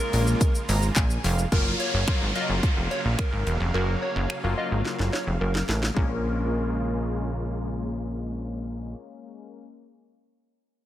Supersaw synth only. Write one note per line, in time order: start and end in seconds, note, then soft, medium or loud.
0.00 1.48 C#3 medium
0.00 1.48 G#3 medium
0.00 1.48 A#3 medium
0.00 1.48 F4 medium
1.52 5.92 C#3 medium
1.52 5.92 F#3 medium
1.52 5.92 A#3 medium
1.52 5.92 F5 medium
5.97 8.95 C#3 medium
5.97 8.95 G#3 medium
5.97 8.95 A#3 medium
5.97 8.95 F4 medium